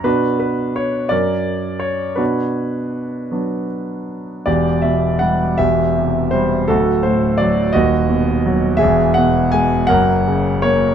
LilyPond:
<<
  \new Staff \with { instrumentName = "Grand piano" } { \time 6/8 \key b \minor \tempo 4. = 55 << { b'8 b'8 cis''8 d''4 cis''8 | b'2 r4 | \key e \minor d''8 e''8 fis''8 e''4 c''8 | a'8 c''8 d''8 dis''4 r8 |
e''8 fis''8 gis''8 fis''4 cis''8 | } \\ { <d' fis'>4. ais'4. | <d' fis'>2 r4 | g'4. g'4. | fis'4. fis'4. |
gis'4. ais'4. | } >> }
  \new Staff \with { instrumentName = "Grand piano" } { \clef bass \time 6/8 \key b \minor b,4. fis,4. | b,4. <fis b d'>4. | \key e \minor <e,, e,>8 b,8 g8 <e,, e,>8 c8 g8 | <d,, d,>8 a,8 fis8 <dis,, dis,>8 b,8 fis8 |
<e,, e,>8 b,8 gis8 <fis,, fis,>8 cis8 ais8 | }
>>